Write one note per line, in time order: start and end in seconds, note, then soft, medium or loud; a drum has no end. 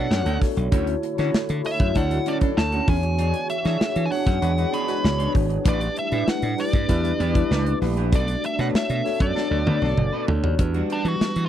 0.00 0.35 F#3 medium
0.00 0.68 A3 medium
0.00 0.70 B3 medium
0.00 0.35 D4 loud
0.00 0.40 D4 medium
0.00 0.68 E4 medium
0.00 0.41 F#4 medium
0.00 0.35 A4 loud
0.00 0.41 A4 medium
0.00 0.41 C#5 medium
0.00 0.74 D5 medium
0.00 0.39 F#5 medium
0.10 0.21 F#2 loud
0.10 muted clean electric guitar stroke soft
0.10 snare loud
0.25 0.37 D2 medium
0.25 0.40 D4 medium
0.25 0.41 F#4 medium
0.25 0.41 A4 medium
0.25 closed hi-hat medium
0.40 0.67 D4 medium
0.40 0.68 F#4 medium
0.40 0.68 A4 medium
0.40 0.68 C#5 medium
0.40 muted clean electric guitar stroke soft
0.40 kick medium
0.40 snare soft
0.40 open hi-hat medium
0.56 0.68 B1 loud
0.56 muted clean electric guitar stroke soft
0.56 closed hi-hat soft
0.71 0.94 D2 loud
0.71 2.85 D3 medium
0.71 2.86 A3 medium
0.71 0.94 C#4 medium
0.71 1.11 E4 loud
0.71 2.86 E4 medium
0.71 1.12 F#4 medium
0.71 5.61 F#4 loud
0.71 0.87 F#4 medium
0.71 1.12 A4 medium
0.71 0.86 A4 medium
0.71 1.12 C#5 loud
0.71 kick loud
0.71 closed hi-hat loud
0.87 muted clean electric guitar stroke soft
0.87 closed hi-hat medium
1.03 muted clean electric guitar stroke soft
1.03 closed hi-hat medium
1.18 1.30 D3 loud
1.18 1.33 C#4 medium
1.18 1.58 E4 loud
1.18 1.58 F#4 medium
1.18 1.33 F#4 medium
1.18 1.34 A4 medium
1.18 1.58 A4 medium
1.18 1.58 C#5 loud
1.18 snare soft
1.18 closed hi-hat soft
1.34 muted clean electric guitar stroke soft
1.34 muted slap bass stroke soft
1.34 snare loud
1.49 1.61 D3 medium
1.49 muted clean electric guitar stroke soft
1.49 closed hi-hat medium
1.64 1.91 E4 medium
1.64 1.91 F#4 medium
1.64 1.91 A4 medium
1.64 1.92 C#5 medium
1.64 1.97 E5 medium
1.64 open hi-hat medium
1.80 1.91 F#2 medium
1.80 kick loud
1.80 closed hi-hat medium
1.95 2.18 D2 medium
1.95 2.05 F#3 loud
1.95 2.05 D4 loud
1.95 2.35 E4 medium
1.95 2.35 F#4 medium
1.95 2.05 A4 loud
1.95 2.35 A4 medium
1.95 2.36 C#5 medium
1.95 2.28 F#5 medium
1.95 muted clean electric guitar stroke medium
1.95 kick medium
1.95 closed hi-hat medium
2.11 2.21 F#3 medium
2.11 2.21 D4 medium
2.11 2.21 A4 medium
2.11 muted clean electric guitar stroke medium
2.11 closed hi-hat medium
2.26 2.48 C#4 medium
2.26 2.42 F#4 medium
2.26 2.40 A4 medium
2.26 2.36 D5 medium
2.26 closed hi-hat medium
2.41 2.61 F#3 medium
2.41 2.61 D4 medium
2.41 2.81 E4 medium
2.41 2.81 F#4 medium
2.41 2.61 A4 loud
2.41 2.82 A4 medium
2.41 2.82 C#5 medium
2.41 muted clean electric guitar stroke soft
2.41 kick medium
2.41 closed hi-hat medium
2.57 2.79 D2 medium
2.57 2.89 A5 loud
2.57 muted clean electric guitar stroke soft
2.57 snare loud
2.72 2.95 C#4 medium
2.72 2.87 F#4 medium
2.72 2.88 A4 medium
2.72 closed hi-hat soft
2.87 3.32 E2 loud
2.87 5.63 E3 medium
2.87 5.62 B3 medium
2.87 10.55 D4 medium
2.87 3.54 D4 medium
2.87 3.54 F#4 medium
2.87 5.62 G#4 medium
2.87 3.55 G#4 medium
2.87 3.55 C#5 medium
2.87 3.46 G#5 medium
2.87 muted clean electric guitar stroke soft
2.87 kick loud
2.87 open hi-hat medium
3.03 muted clean electric guitar stroke soft
3.03 closed hi-hat soft
3.18 3.40 D4 medium
3.18 3.34 G#4 medium
3.18 3.33 C#5 medium
3.18 closed hi-hat loud
3.34 muted clean electric guitar stroke medium
3.34 closed hi-hat medium
3.50 4.06 E5 medium
3.50 muted clean electric guitar stroke soft
3.50 closed hi-hat medium
3.64 3.76 E3 loud
3.64 4.05 D4 medium
3.64 3.79 D4 medium
3.64 4.05 F#4 medium
3.64 4.05 G#4 medium
3.64 3.80 G#4 medium
3.64 3.80 C#5 medium
3.64 4.05 C#5 medium
3.64 snare soft
3.64 closed hi-hat soft
3.80 muted clean electric guitar stroke soft
3.80 muted slap bass stroke soft
3.80 snare loud
3.96 4.07 E3 medium
3.96 muted clean electric guitar stroke soft
3.96 closed hi-hat medium
4.06 4.11 G#5 medium
4.11 4.38 D4 medium
4.11 4.38 F#4 medium
4.11 4.38 G#4 medium
4.11 4.38 C#5 loud
4.11 4.75 F#5 loud
4.11 snare soft
4.11 open hi-hat medium
4.26 4.38 F#2 medium
4.26 muted clean electric guitar stroke soft
4.26 kick medium
4.26 snare soft
4.26 closed hi-hat medium
4.42 4.64 E2 loud
4.42 4.52 G#3 loud
4.42 4.82 D4 medium
4.42 4.52 F#4 medium
4.42 4.82 F#4 medium
4.42 4.82 G#4 medium
4.42 4.52 B4 loud
4.42 4.82 C#5 medium
4.42 muted clean electric guitar stroke soft
4.42 closed hi-hat medium
4.57 4.67 G#3 medium
4.57 4.68 F#4 medium
4.57 4.67 B4 loud
4.57 muted clean electric guitar stroke soft
4.57 closed hi-hat soft
4.72 4.94 D4 medium
4.72 4.88 G#4 medium
4.72 4.87 C#5 medium
4.72 5.31 B5 loud
4.72 closed hi-hat medium
4.88 5.08 G#3 medium
4.88 5.28 D4 medium
4.88 5.28 F#4 medium
4.88 5.08 F#4 loud
4.88 5.28 G#4 medium
4.88 5.08 B4 loud
4.88 5.29 C#5 medium
4.88 muted clean electric guitar stroke soft
4.88 closed hi-hat medium
5.03 5.26 C#2 medium
5.03 muted clean electric guitar stroke soft
5.03 snare loud
5.18 5.33 D4 medium
5.18 5.34 G#4 medium
5.18 5.34 C#5 medium
5.18 closed hi-hat medium
5.34 5.57 G#1 medium
5.34 5.61 D4 medium
5.34 5.61 F#4 medium
5.34 5.61 G#4 medium
5.34 5.62 C#5 medium
5.34 muted clean electric guitar stroke soft
5.34 kick medium
5.34 open hi-hat medium
5.50 muted clean electric guitar stroke soft
5.50 closed hi-hat soft
5.65 5.87 A1 loud
5.65 8.10 G3 loud
5.65 10.55 A3 medium
5.65 5.87 D4 medium
5.65 6.05 D4 medium
5.65 6.05 E4 medium
5.65 5.81 G4 medium
5.65 6.06 B4 medium
5.65 5.80 B4 medium
5.65 kick loud
5.65 closed hi-hat loud
5.69 5.96 D5 medium
5.81 muted clean electric guitar stroke medium
5.81 closed hi-hat medium
5.96 6.29 E5 medium
5.96 muted clean electric guitar stroke soft
5.96 closed hi-hat medium
6.11 6.23 A2 loud
6.11 6.51 D4 medium
6.11 6.26 D4 medium
6.11 6.52 E4 medium
6.11 6.52 G4 medium
6.11 6.27 G4 medium
6.11 6.28 B4 medium
6.11 6.52 B4 medium
6.11 closed hi-hat soft
6.27 6.60 F#5 medium
6.27 muted clean electric guitar stroke soft
6.27 muted slap bass stroke soft
6.27 snare loud
6.42 6.54 A2 medium
6.42 muted clean electric guitar stroke soft
6.42 closed hi-hat medium
6.58 6.84 D4 medium
6.58 6.85 E4 medium
6.58 6.85 G4 medium
6.58 6.85 B4 loud
6.58 7.78 D5 medium
6.58 snare soft
6.58 open hi-hat medium
6.73 6.85 G2 medium
6.73 muted clean electric guitar stroke soft
6.73 kick medium
6.73 closed hi-hat medium
6.88 7.11 E2 medium
6.88 6.98 G3 loud
6.88 7.29 D4 medium
6.88 6.98 E4 loud
6.88 7.29 E4 medium
6.88 7.29 G4 medium
6.88 6.98 B4 loud
6.88 7.29 B4 medium
6.88 muted clean electric guitar stroke soft
6.88 kick medium
6.88 closed hi-hat medium
7.03 7.13 G3 medium
7.03 7.13 E4 medium
7.03 7.13 B4 loud
7.03 muted clean electric guitar stroke medium
7.03 closed hi-hat soft
7.19 7.42 E2 medium
7.19 7.41 D4 medium
7.19 7.35 G4 medium
7.19 7.34 B4 medium
7.19 closed hi-hat medium
7.34 7.74 G3 medium
7.34 7.75 D4 medium
7.34 7.74 E4 loud
7.34 7.75 E4 medium
7.34 7.75 G4 medium
7.34 7.74 B4 loud
7.34 7.76 B4 loud
7.34 muted clean electric guitar stroke soft
7.34 kick loud
7.34 closed hi-hat medium
7.51 7.73 C#2 medium
7.51 7.72 D4 medium
7.51 7.67 G4 loud
7.51 7.65 B4 loud
7.51 snare loud
7.66 muted clean electric guitar stroke soft
7.66 closed hi-hat soft
7.81 8.13 A#1 medium
7.81 8.08 D4 medium
7.81 8.08 E4 medium
7.81 8.08 G4 medium
7.81 8.08 B4 medium
7.81 muted clean electric guitar stroke soft
7.81 snare soft
7.81 open hi-hat medium
7.97 8.11 D4 medium
7.97 8.13 G4 medium
7.97 8.13 B4 medium
7.97 closed hi-hat soft
8.12 8.34 B1 loud
8.12 10.56 B3 medium
8.12 8.34 D4 medium
8.12 8.52 D4 medium
8.12 8.52 F#4 medium
8.12 8.52 A4 medium
8.12 8.28 A4 medium
8.12 8.26 B4 medium
8.12 8.52 D5 medium
8.12 8.45 D5 medium
8.12 kick loud
8.12 closed hi-hat loud
8.28 muted clean electric guitar stroke soft
8.28 closed hi-hat medium
8.43 8.59 E5 medium
8.43 muted clean electric guitar stroke soft
8.43 closed hi-hat medium
8.59 8.70 B2 medium
8.59 8.98 D4 medium
8.59 8.73 D4 medium
8.59 8.99 F#4 medium
8.59 8.99 A4 medium
8.59 8.74 A4 medium
8.59 8.74 B4 medium
8.59 8.99 C#5 medium
8.59 8.65 F#5 loud
8.59 snare soft
8.59 closed hi-hat soft
8.74 9.21 E5 medium
8.74 muted clean electric guitar stroke soft
8.74 muted slap bass stroke medium
8.74 snare loud
8.89 9.00 B2 medium
8.89 muted clean electric guitar stroke soft
8.89 closed hi-hat medium
9.05 9.31 D4 medium
9.05 9.31 F#4 medium
9.05 9.32 A4 medium
9.05 9.32 C#5 loud
9.05 snare soft
9.05 open hi-hat medium
9.20 9.31 F#2 medium
9.20 10.25 D5 medium
9.20 muted clean electric guitar stroke medium
9.20 kick loud
9.20 closed hi-hat medium
9.35 9.45 F#3 loud
9.35 9.75 D4 medium
9.35 9.45 D4 loud
9.35 9.75 F#4 medium
9.35 9.45 A4 loud
9.35 9.76 A4 medium
9.35 9.76 D5 medium
9.35 muted clean electric guitar stroke soft
9.35 snare medium
9.50 9.62 D2 medium
9.50 9.60 F#3 medium
9.50 9.60 D4 medium
9.50 9.60 A4 loud
9.50 muted clean electric guitar stroke soft
9.66 9.77 D2 medium
9.66 9.88 D4 medium
9.66 9.82 A4 medium
9.66 9.81 B4 medium
9.66 high tom medium
9.81 9.93 B1 medium
9.81 10.02 F#3 medium
9.81 10.21 D4 medium
9.81 10.01 D4 medium
9.81 10.22 F#4 medium
9.81 10.02 A4 loud
9.81 10.22 A4 medium
9.81 10.22 D5 medium
9.81 muted clean electric guitar stroke soft
9.81 high tom medium
9.97 10.08 F#1 medium
9.97 muted clean electric guitar stroke soft
9.97 mid tom medium
10.13 10.27 D4 medium
10.13 10.28 A4 medium
10.13 10.28 B4 loud
10.28 10.43 D2 medium
10.28 10.55 D4 medium
10.28 10.55 F#4 medium
10.28 10.55 A4 medium
10.28 10.55 C#5 medium
10.28 muted clean electric guitar stroke soft
10.28 floor tom loud
10.43 10.54 D#2 medium
10.43 muted clean electric guitar stroke medium
10.43 floor tom medium
10.59 10.81 E2 loud
10.59 11.49 E3 medium
10.59 11.49 G3 loud
10.59 11.49 B3 medium
10.59 11.49 D4 medium
10.59 10.99 D4 medium
10.59 10.99 F#4 medium
10.59 10.99 G4 medium
10.59 11.00 B4 loud
10.59 11.49 F#5 medium
10.59 muted clean electric guitar stroke soft
10.59 kick loud
10.59 closed hi-hat loud
10.74 10.88 G3 medium
10.74 10.89 D4 medium
10.74 10.90 F#4 medium
10.74 closed hi-hat medium
10.90 11.07 G3 medium
10.90 11.05 D4 medium
10.90 11.04 F#4 medium
10.90 closed hi-hat medium
11.05 11.16 E3 medium
11.05 11.46 G3 medium
11.05 11.45 D4 medium
11.05 11.45 F#4 medium
11.05 11.46 B4 medium
11.05 muted clean electric guitar stroke soft
11.05 closed hi-hat soft
11.21 muted slap bass stroke soft
11.21 snare loud
11.36 11.47 E3 medium
11.36 muted clean electric guitar stroke soft
11.36 closed hi-hat medium